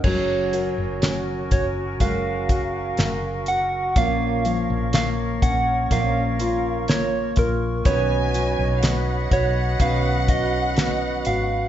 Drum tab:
CC |x-------|--------|--------|
HH |-xxxxxxx|xxxxxxxx|xxxxxxxx|
SD |--o---o-|--o---o-|--o---o-|
BD |o--ooo--|o--oo--o|o--ooo--|